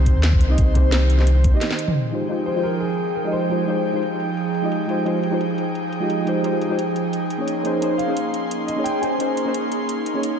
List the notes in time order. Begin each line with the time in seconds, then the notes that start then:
Already playing: C2 D#3 C4 C5
0.06 kick, closed hi-hat
0.15 D#2
0.23 snare, closed hi-hat
0.33 kick
0.41 C2, closed hi-hat
0.48 A#3 C4 D#4 G4 D#5
0.58 C2, kick, closed hi-hat
0.73 A#3 C4 D#4 G4 C5, kick, closed hi-hat
0.91 A#3 C4 D#4 G4 C5, snare, closed hi-hat
1.10 closed hi-hat
1.17 A#3 C4 D#4 G4 C5, snare
1.27 closed hi-hat
1.44 kick, closed hi-hat
1.50 A#3 C4 D#4
1.55 G4 D#5
1.61 snare, closed hi-hat
1.71 snare
1.79 closed hi-hat
1.88 mid tom
1.96 F3 D#4 G#4 G5
2.11 G#3 D#4 F4 G4 C5, closed hi-hat
2.29 G#3 D#4 F4 G4 C5, closed hi-hat
2.46 C5, closed hi-hat
2.55 G#3 D#4 F4 G4 C5
2.63 A#4, closed hi-hat
2.80 G#4, closed hi-hat
2.99 closed hi-hat
3.15 A#4, closed hi-hat
3.24 G#3 D#4 F4 G4 D#5
3.32 C5, closed hi-hat
3.49 G#3 D#4 F4 G4 G#4 C5, closed hi-hat
3.67 G#3 D#4 F4 G4 C5, closed hi-hat
3.86 closed hi-hat
3.93 G#3 D#4 F4 G4 C5
4.03 closed hi-hat
4.20 closed hi-hat
4.37 closed hi-hat
4.54 closed hi-hat
4.62 G#3 D#4 F4 G4 D#5
4.72 closed hi-hat
4.87 G#3 D#4 F4 G4 C5, closed hi-hat
5.04 G#3 D#4 F4 G4 C5, closed hi-hat
5.23 closed hi-hat
5.31 G#3 D#4 F4 G4 C5
5.41 closed hi-hat
5.58 closed hi-hat
5.75 closed hi-hat
5.92 closed hi-hat
6.00 G#3 D#4 F4 G4 D#5
6.10 closed hi-hat
6.25 G#3 D#4 F4 G4 C5, closed hi-hat
6.43 G#3 D#4 F4 G4 C5, closed hi-hat
6.61 closed hi-hat
6.69 G#3 D#4 F4 G4 C5
6.79 closed hi-hat
6.96 closed hi-hat
7.13 closed hi-hat
7.30 closed hi-hat
7.38 A#3 C#4 D#4 G#4 C#5
7.48 A#3 C#4 C6, closed hi-hat
7.63 A#3 C#4 D#4 G#4 C5, closed hi-hat
7.80 A#3 C#4 D#4 G#4 C5, closed hi-hat
7.98 F5, closed hi-hat
8.07 A#3 C#4 D#4 G#4 C5
8.17 closed hi-hat
8.34 closed hi-hat
8.51 closed hi-hat
8.67 D#5, closed hi-hat
8.76 A#3 C#4 D#4 G#4 C#5
8.84 G5, closed hi-hat
9.01 A#3 C#4 D#4 G#4 C5 G#5, closed hi-hat
9.18 A#3 C#4 D#4 G#4 C5, closed hi-hat
9.37 closed hi-hat
9.45 A#3 C#4 D#4 G#4 C5
9.54 closed hi-hat
9.72 closed hi-hat
9.89 closed hi-hat
10.06 closed hi-hat
10.14 A#3 C#4 D#4 G#4 C#5
10.23 closed hi-hat